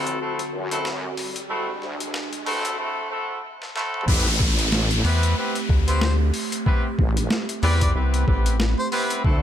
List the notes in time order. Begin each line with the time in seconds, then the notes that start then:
Already playing: A1 D3 A3 C4 E4 F#4 A4, riser
0.07 closed hi-hat
0.21 A3 C4 E4 F#4 A4
0.39 closed hi-hat
0.53 F#2
0.71 A3 C4 E4 F#4 A4, snare, closed hi-hat
0.85 snare
1.17 snare, open hi-hat
1.36 closed hi-hat
1.50 A3 C4 D4 E4 F#4 A4
1.82 D2, snare
2.00 closed hi-hat
2.14 snare
2.33 closed hi-hat
2.46 A1 A3 C4 E4 F#4 A4, snare, open hi-hat
2.65 snare, closed hi-hat
2.78 A3 C4 E4 F#4 A4
3.11 A3 C4 E4 F#4 A4
3.62 snare
3.75 A3 C4 E4 F#4 A4, snare
3.94 mid tom
4.01 mid tom
4.08 A1 A3 B3 C4 E4 G4 B4, kick, mid tom, crash, downlifter
4.17 mid tom
4.26 snare
4.40 kick
4.59 closed hi-hat
4.72 snare
4.91 closed hi-hat
5.05 E2 B3 C4 E4 G4 B4, snare, open hi-hat
5.23 closed hi-hat
5.37 B3 C4 E4 G4 B4
5.55 closed hi-hat
5.69 D2, kick
5.88 B3 C4 E4 G4 B4 C5, closed hi-hat
6.01 C5, snare
6.34 open hi-hat
6.52 closed hi-hat
6.66 B3 C4 E4 G4 B4, kick
6.99 A1, kick
7.17 closed hi-hat
7.30 snare
7.49 closed hi-hat
7.63 E2 B3 C4 E4 G4 B4 D5, open hi-hat
7.81 D5, kick, closed hi-hat
7.95 C2 B3 C4 E4 G4 B4
8.14 closed hi-hat
8.27 A1 B3 C4 E4 G4 B4, kick
8.46 closed hi-hat
8.60 snare
8.78 C5
8.92 B3 C4 E4 G4 B4 C5, open hi-hat
9.10 closed hi-hat
9.24 D2 D3 A3 C4 E4 F#4 A4, kick